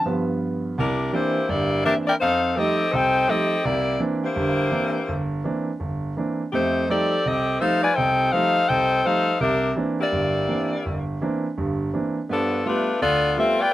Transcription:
0.05 G2 F3 B3
0.78 C2 G3 D4 E4 A#4
1.13 E3 A#3 C4 D4 E4 G4 C5
1.48 G1 G2 A#3 E4 G4 D5
1.85 E3 A#3 C4 D4 G4 A#4 E5
2.07 E4 A#4 D5 G5
2.19 F2 D#4 A4 C5 F5
2.56 F3 G3 A3 C4 D#4 G4 A4 D#5
2.92 C2 D#4 A4 C5 G5
3.28 F3 G3 A3 C4 D#4 G4 A4 D#5
3.65 C2 A#3 E4 G4 D5
4.00 E3 A#3 C4 D4
4.24 A#3 E4 G4 C5
4.36 G1 G2
4.71 E3 A#3 C4 D4
5.08 G1
5.44 E3 A#3 C4 D4
5.80 G1
6.17 E3 A#3 C4 D4
6.53 F2 A3 D#4 G4 C5
6.89 F3 G3 A3 C4 D#4 G4 A4 D5
7.26 C2 C4 G4 A4 D#5
7.59 F3 G3 A3 D#4 A4 C5 E5 F5
7.82 F4 B4 D5 G#5
7.95 C2 C3 D#4 A4 C5 G5
8.32 F3 G3 A3 D#4 A4 C5 F5
8.66 C2 D#4 A4 C5 G5
9.03 F3 G3 A3 D#4 A4 C5 F5
9.40 C2 D4 G4 A#4 E5
9.76 E3 A#3 C4 D4
10.00 A#3 E4 G4 D5
10.12 G1 G2
10.48 E3 A#3 C4 D4
10.86 G1
11.22 E3 A#3 C4 D4
11.58 G1 G2
11.94 E3 A#3 C4 D4
12.29 G2 F3 B3 D4 A4
12.65 G3 A3 B3 D4 F4 B4
13.01 D2 B3 F4 A4 D5
13.36 G3 A3 B3 C4 F4 A4 E5
13.60 F4 B4 D5 G5

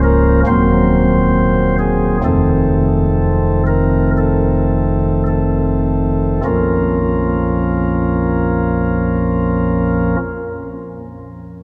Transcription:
Already playing: C#1 C#2 F3 A#3 C#4
0.04 A#4
0.47 D#1 D#2 F#3 A#3 C4 C5
1.79 G#4
2.24 F1 F2 D#3 A3 C4 A4
3.67 A#4
4.18 A4
5.27 A4
6.44 A#1 F2 F3 A#3 C#4 F4 A#4

